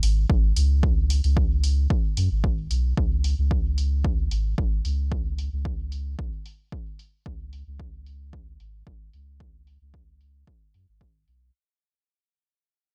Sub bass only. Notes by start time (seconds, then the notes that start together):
0.03 G#1
0.30 G#1
0.56 C#2
1.24 C#2
2.17 F#2
2.31 G#1
2.71 B1
2.97 C#2
3.38 C#2
4.31 G#1
4.58 G#1
4.85 C#2
5.53 C#2
6.19 B1
7.26 C#2
7.67 C#2
8.60 G#1
8.87 G#1
9.13 C#2
9.81 C#2
10.74 F#2
10.88 G#1
11.28 B1